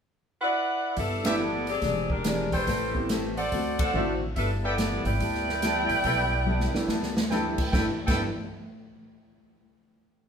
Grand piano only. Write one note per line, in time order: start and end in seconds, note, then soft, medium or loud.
1.24 1.38 A3 medium
1.24 1.38 B3 medium
1.24 1.38 D4 medium
1.24 1.38 E4 medium
2.24 2.49 G#3 soft
2.24 2.49 C4 soft
2.24 2.49 D4 soft
2.24 2.50 G4 soft
2.94 3.07 B3 medium
2.94 3.08 C4 medium
2.94 3.08 E4 medium
2.94 3.08 G4 medium
3.93 4.18 A3 medium
3.93 4.18 C4 medium
3.93 4.19 E4 medium
3.93 4.19 F#4 medium
6.73 6.87 A3 medium
6.73 6.87 B3 medium
6.73 6.87 D4 medium
6.73 6.88 E4 medium
7.30 7.55 A3 soft
7.30 7.56 B3 soft
7.30 7.56 D4 soft
7.30 7.56 E4 medium
7.73 7.90 A3 medium
7.73 7.90 B3 soft
7.73 7.90 D4 soft
7.73 7.90 E4 medium
8.08 8.26 A3 medium
8.08 8.27 B3 medium
8.08 8.27 D4 soft
8.08 8.27 E4 medium